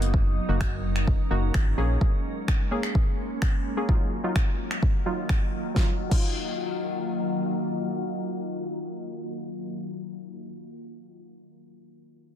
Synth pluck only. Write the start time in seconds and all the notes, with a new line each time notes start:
Already playing: A#3 D#4 F#4
0.49 A#3 D#4 F#4
1.31 A#3 D#4 F#4
1.78 A#3 C#4 G#4
2.71 A#3 C#4 G#4
3.77 A#3 C#4 G#4
3.89 F#3 D#4 F4
4.24 F#3 D#4 F4
5.06 F#3 D#4 F4
5.74 F#3 D#4 F4
6.10 F#3 D#4
6.14 F4